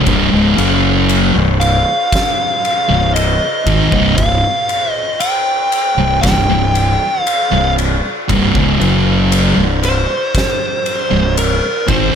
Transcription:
0.06 C1 C2 G2, kick, ride
0.32 C#1 C#2 G#2
0.57 F#1 F#2 C#3 F#3, ride
1.09 ride
1.35 C1 C2 G2
1.60 F5, ride
2.13 kick, snare, ride
2.65 ride
2.89 C1 C2 G2
3.14 D#5, ride
3.66 G#1 G#2 D#3, kick, ride
3.91 C1 C2 G2, kick
4.17 C1 C2 G2 F5, kick, ride
4.69 ride
4.91 D#5
5.20 G5, ride
5.72 ride
5.97 C1 C2 G2
6.23 C1 C2 G2 G5, kick, snare, ride
6.50 C1 C2 G2
6.75 ride
7.23 F5
7.27 ride
7.51 C1 C2 G2
7.78 ride
8.29 C1 C2 G2, kick, ride
8.54 C#1 C#2 G#2, kick
8.80 F#1 F#2 C#3 F#3, ride
9.32 ride
9.57 C1 C2 G2
9.83 C5, ride
10.35 kick, snare, ride
10.86 ride
11.10 C1 C2 G2
11.37 A#4, ride
11.87 G#1 G#2 D#3 C5, kick, ride

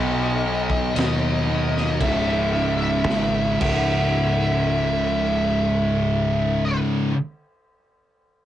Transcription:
Already playing: B1 B2 F#3 B3 D#5
0.44 B2 F#3 B3
0.70 kick
0.96 D#2 B2 F#3 B3 D#5, snare, crash
1.48 B2 F#3 B3
1.77 snare
2.00 C#1 C#2 G#2 C#3 E5, kick, crash
2.53 C#2 G#2 C#3
3.08 G#1 C#2 G#2 C#3, snare
3.60 C#1 C#2 G#2 C#3 E5, kick, crash

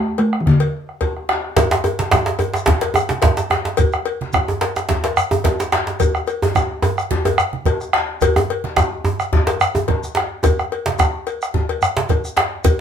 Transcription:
Already playing: A3
0.18 A3, bombo rim, cowbell, djembe slap
0.33 bombo rim
0.40 E3
0.46 D3, bombo rim, bombo low, djembe slap, djembe bass
0.60 cowbell
0.89 bombo rim
1.01 bombo rim, bombo low, cowbell, djembe slap, djembe tone
1.17 bombo rim, djembe slap
1.29 bombo rim, djembe slap
1.44 bombo rim
1.57 bombo low, cowbell, djembe slap, low conga, djembe bass, shekere
1.71 bombo rim, djembe slap, shekere
1.84 cowbell, djembe tone, shekere
1.99 bombo rim, djembe slap, high conga
2.11 bombo rim, bombo low, djembe slap, djembe tone, low conga, shekere
2.26 djembe slap
2.39 bombo rim, cowbell, djembe tone, shekere
2.53 bombo rim, djembe slap, shekere
2.66 bombo low, djembe slap, djembe bass, low conga
2.81 cowbell, djembe slap
2.94 bombo rim, djembe tone, high conga, shekere
3.09 bombo rim, djembe slap, high conga
3.22 bombo low, cowbell, djembe slap, djembe tone, low conga, shekere
3.37 bombo rim, djembe slap, shekere
3.50 bombo rim, djembe slap, djembe tone
3.65 djembe slap
3.77 bombo low, cowbell, low conga, djembe bass, shekere
3.92 bombo rim, shekere
4.06 cowbell
4.21 bombo rim, djembe slap, high conga
4.33 bombo rim, bombo low, djembe tone, low conga, shekere
4.48 djembe tone
4.61 cowbell, djembe slap, shekere
4.76 bombo rim, djembe slap, shekere
4.89 bombo low, djembe slap, low conga, djembe bass
5.04 cowbell, djembe slap
5.16 bombo rim, high conga, shekere
5.31 bombo rim, djembe tone, high conga
5.44 bombo low, cowbell, djembe slap, djembe tone, low conga, shekere
5.60 bombo rim, djembe slap, shekere
5.72 bombo rim, djembe slap
5.87 djembe slap
6.00 bombo low, cowbell, low conga, djembe bass, shekere
6.15 bombo rim, shekere
6.27 cowbell, shekere
6.42 bombo rim, djembe slap, djembe tone
6.55 bombo rim, bombo low, djembe tone, low conga, shekere
6.82 bombo rim, cowbell, djembe tone, shekere
6.98 bombo rim, shekere
7.11 bombo low, djembe slap, low conga, djembe bass
7.25 cowbell, djembe tone
7.38 bombo rim, high conga, shekere
7.53 bombo rim, high conga
7.65 bombo low, cowbell, djembe tone, low conga, shekere
7.81 bombo rim, shekere
7.93 bombo rim, djembe slap
8.09 djembe slap
8.21 bombo rim, bombo low, cowbell, high conga, low conga, djembe bass, shekere
8.36 bombo rim, djembe tone
8.49 cowbell, high conga
8.64 bombo rim, djembe slap, high conga
8.76 bombo rim, bombo low, djembe slap, djembe tone, low conga, shekere
9.05 djembe tone, high conga, shekere
9.20 bombo rim, high conga, shekere
9.33 bombo rim, bombo low, djembe slap, high conga, djembe bass, low conga
9.47 bombo rim, cowbell, djembe slap, shekere
9.61 bombo rim, shekere
9.75 bombo rim, djembe tone, high conga, shekere
9.88 bombo low, cowbell, djembe tone, low conga
10.03 bombo rim, high conga, shekere
10.15 bombo rim, djembe slap
10.43 bombo low, cowbell, djembe tone, djembe bass, low conga, shekere
10.59 bombo rim, shekere
10.72 cowbell
10.86 bombo rim, djembe slap, high conga
10.99 bombo rim, bombo low, djembe tone, low conga, shekere
11.27 bombo rim, cowbell, shekere
11.42 bombo rim, shekere
11.54 bombo low, djembe slap, djembe bass, low conga
11.69 cowbell
11.82 bombo rim, high conga, shekere
11.97 bombo rim, djembe slap, high conga
12.09 bombo low, cowbell, djembe tone, low conga, shekere
12.25 bombo rim, shekere
12.37 bombo rim, djembe slap
12.52 djembe slap
12.64 bombo low, cowbell, low conga, djembe bass, shekere

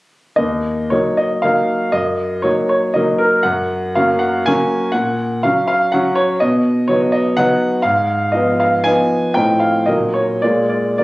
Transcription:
0.36 D#2 D#5
0.90 F#3 A#3 D#4 C#5
1.17 D#5
1.42 F#3 A#3 D#4 F5
1.92 F#2 D#5
2.42 F#3 A#3 D#4 C#5
2.69 C#5
2.94 F#3 A#3 D#4 D#5
3.18 A#4
3.43 F#2 F#5
3.95 F#3 A#3 C#4 F5
4.19 F#5
4.46 F#3 A#3 C#4 G#5
4.92 A#2 F#5
5.43 F#3 C#4 F5
5.68 F5
5.92 F#3 C#4 F#5
6.15 C#5
6.40 B2 D#5
6.88 F#3 B3 D#4 C#5
7.12 D#5
7.37 F#3 B3 D#4 F#5
7.82 G#2 F5
8.32 F3 B3 D#4 D#5
8.60 F5
8.84 F3 B3 D#4 G#5
9.34 A2 F3 C4 D#4 G5
9.60 F5
9.86 A#2 F#3 A#3 D#4 D#5
10.14 C#5
10.42 A#2 G#3 A#3 F4 D5
10.69 D5
10.98 D#3 A#3 F#4 D5

